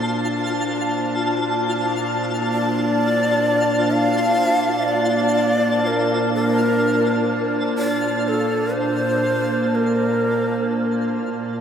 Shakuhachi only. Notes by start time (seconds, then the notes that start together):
2.53 D5
3.94 F5
4.88 D5
5.87 A#4
6.34 A#4
7.79 D5
8.28 A4
8.74 C5
9.75 A#4